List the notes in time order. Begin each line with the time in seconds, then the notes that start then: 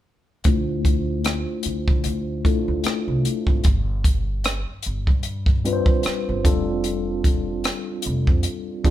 0.44 D2 A3 D4 E4 F4 C5, kick, closed hi-hat
0.85 kick, closed hi-hat
1.24 cross-stick, closed hi-hat
1.63 D2, closed hi-hat
1.88 D3, kick
2.04 D2, closed hi-hat
2.45 A3 D4 E4 F4 A4, kick, closed hi-hat
2.68 D2
2.84 muted upright bass stroke, cross-stick, closed hi-hat
3.08 C2
3.25 closed hi-hat
3.47 G#1, kick
3.64 G1, kick, closed hi-hat
4.04 kick, closed hi-hat
4.44 cross-stick, closed hi-hat
4.83 G1, closed hi-hat
5.07 G2, kick
5.23 closed hi-hat
5.46 kick
5.65 G3 C4 D4 F4 B4, closed hi-hat
5.73 C5
5.86 kick
6.03 muted upright bass stroke, cross-stick, closed hi-hat
6.29 G1
6.44 F1 G3 C4 D4 F4 A4, kick, closed hi-hat
6.84 closed hi-hat
7.24 kick, closed hi-hat
7.64 cross-stick, closed hi-hat
8.02 closed hi-hat
8.06 F1
8.27 F2, kick
8.43 closed hi-hat
8.84 F2 G3 C4 D4 F4 G#4, kick, closed hi-hat